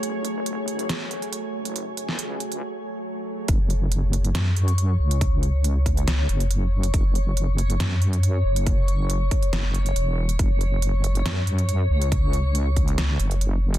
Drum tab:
HH |x-x-x-xxx-xxx--x|x-x-x-xx--------|x-x-x-xxx-xxx--x|x-x-x-xxx-xxx--x|
SD |--------o-------|---o------------|--------o-------|--------o-------|
BD |----------------|----------------|o---------------|o-----o---------|

HH |x-x-x-xxx-xxx--x|x-x-x-xxx-xxx--x|x-x-x-xxx-xxx--x|x-x-x-xxx-xxx--x|
SD |--------o-------|--------o-------|--------o-------|--------o-------|
BD |o---------------|o-----o---------|o---------------|o-----o---------|